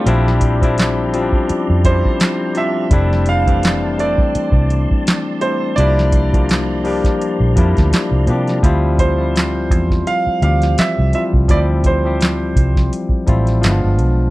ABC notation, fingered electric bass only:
X:1
M:4/4
L:1/16
Q:"Swing 16ths" 1/4=84
K:Dm
V:1 name="Fingered electric bass" clef=bass
B,,,6- B,,, z2 F,,2 z4 z | F,,,6- F,,, z2 C,,2 z4 z | C,,6- C,, z2 B,,, F,, D,, z C,, C,2 | D,,6 E,,2 z2 D,,2 z C,, z C,, |
D,,6 C,,2 z2 A,,,2 G,,, G,,, =B,,,2 |]